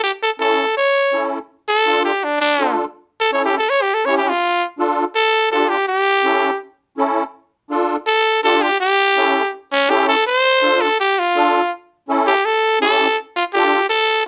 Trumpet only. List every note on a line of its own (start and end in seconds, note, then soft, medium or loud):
0.04 0.12 G4 medium
0.23 0.31 A4 medium
0.40 0.74 A4 medium
0.77 1.28 C#5 medium
1.68 2.04 A4 loud
2.05 2.26 G4 medium
2.24 2.40 D4 medium
2.41 2.77 D4 medium
3.20 3.32 A4 medium
3.33 3.45 C#5 medium
3.45 3.57 G4 medium
3.58 3.71 A4 medium
3.70 3.84 C#5 medium
3.82 3.96 G4 medium
3.94 4.07 A4 medium
4.06 4.17 C#5 medium
4.18 4.31 G4 medium
4.29 4.65 F4 loud
5.16 5.51 A4 loud
5.52 5.71 A4 medium
5.69 5.87 G4 medium
5.88 6.59 G4 loud
8.07 8.43 A4 medium
8.43 8.63 A4 loud
8.62 8.80 G4 medium
8.81 9.51 G4 loud
9.72 9.91 C#4 loud
9.90 10.08 G4 medium
10.09 10.26 A4 loud
10.27 10.83 C5 loud
10.81 10.99 A4 medium
11.00 11.20 G4 medium
11.19 11.71 F4 medium
12.27 12.47 G4 loud
12.45 12.81 A4 medium
12.82 13.17 A4 loud
13.36 13.44 F4 medium
13.54 13.88 G4 medium
13.89 14.24 A4 loud